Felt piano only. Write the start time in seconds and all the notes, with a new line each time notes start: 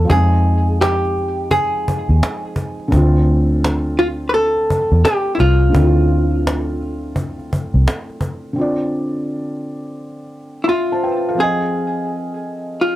0.05 F3 C4
0.10 G#3 D#4
2.88 D3 A3
2.93 C4 F4
5.69 D3 A3
5.75 C4 E4
5.84 F4
8.53 D3 C4
8.58 F4 D5
10.68 E5 C6
10.92 C5 A5
11.03 B4 G5
11.29 A4 F5
11.35 F3 C4
11.40 G#4 D#5